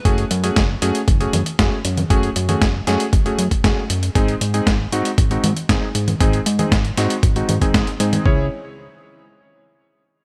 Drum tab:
HH |xxxxx-xxxxxxx-xx|xxxxx-xxxxxxx-xx|xxxxx-xxxxxxx-xx|xxxxxxxxxxxxxxxx|
SD |----o-------o---|----o-o-----o---|----o-------o---|----o-o-----o---|
CG |----------o----o|---o------------|----------o----o|---o------oo---o|
BD |o---o---o---o---|o---o---o--oo---|o---o---o---o---|o---o---o--oo---|

HH |----------------|
SD |----------------|
CG |----------------|
BD |o---------------|